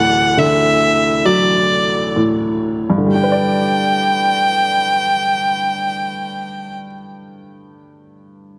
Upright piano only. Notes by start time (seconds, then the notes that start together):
Already playing: D1 D2 A2
0.37 D3
1.25 F#3
2.16 A2
2.90 G2
2.98 D3
3.06 G3
3.15 D4
3.24 B4
3.32 D5